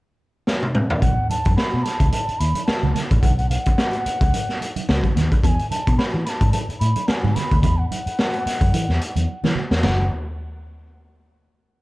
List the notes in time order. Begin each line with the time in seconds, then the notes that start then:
0.47 snare
0.63 high tom
0.75 mid tom
0.90 floor tom
1.02 B1 F#5, kick, closed hi-hat, muted conga, low conga
1.30 A5, closed hi-hat, muted conga, high conga
1.45 F#2, kick, closed hi-hat
1.57 B5, snare
1.73 B2
1.84 A5, snare, closed hi-hat, muted conga
2.00 C#2, kick, closed hi-hat
2.12 A5, closed hi-hat, muted conga, high conga
2.29 muted fingered electric bass stroke, closed hi-hat
2.39 D#2 B5, closed hi-hat
2.55 closed hi-hat, high conga
2.66 A5, muted fingered electric bass stroke, snare, muted conga
2.83 C#2, high conga, low conga
2.94 A5, snare, closed hi-hat, muted conga, high conga, low conga
3.11 A1, kick, closed hi-hat
3.22 B1 F#5, kick, closed hi-hat, muted conga, low conga
3.37 F#5, closed hi-hat
3.50 F#5, closed hi-hat, high conga
3.66 kick, closed hi-hat
3.78 snare, muted conga
3.93 closed hi-hat
4.06 muted fingered electric bass stroke, closed hi-hat
4.21 C#2, kick, closed hi-hat
4.34 closed hi-hat, muted conga, high conga
4.49 snare
4.61 closed hi-hat, muted conga
4.76 closed hi-hat, high conga
4.89 C#2, snare, muted conga
5.04 kick, closed hi-hat, high conga, low conga
5.16 D#2, snare, closed hi-hat, muted conga, high conga, low conga
5.32 kick, closed hi-hat
5.44 E2 G#5 A5, kick, closed hi-hat, muted conga, low conga
5.59 closed hi-hat
5.71 A5, closed hi-hat, high conga
5.87 B2, kick, closed hi-hat
5.98 B5, muted fingered electric bass stroke, snare
6.14 E3
6.25 A5 B5, snare, closed hi-hat
6.41 G#2, kick, closed hi-hat
6.52 A5, closed hi-hat, muted conga, high conga
6.69 muted fingered electric bass stroke, closed hi-hat
6.80 A2 B5, closed hi-hat, muted conga
6.96 closed hi-hat, high conga
7.08 G#5 A5, muted fingered electric bass stroke, snare, muted conga
7.24 G#2, high conga, low conga
7.35 B5, snare, closed hi-hat, muted conga, high conga, low conga
7.51 D2, kick, closed hi-hat
7.62 E2 B5, kick, closed hi-hat, muted conga, low conga
7.78 F#5
7.90 F#5, closed hi-hat, high conga
8.06 muted fingered electric bass stroke, closed hi-hat
8.19 snare
8.34 closed hi-hat
8.46 muted fingered electric bass stroke, snare, closed hi-hat
8.61 F#2, kick, closed hi-hat
8.73 E3, closed hi-hat, high conga
8.89 E2, snare
9.01 closed hi-hat
9.16 E2, closed hi-hat, high conga
9.28 muted conga
9.44 E3, snare, high conga, low conga
9.55 muted conga, high conga, low conga
9.71 E2, snare
9.83 F#1 F#5, snare, floor tom, crash, high conga